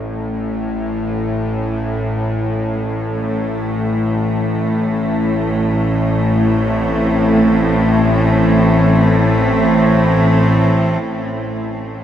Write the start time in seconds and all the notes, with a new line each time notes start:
Already playing: A1 A2
2.75 A2
3.18 A3
3.73 E3
6.49 C4
11.03 A1 A2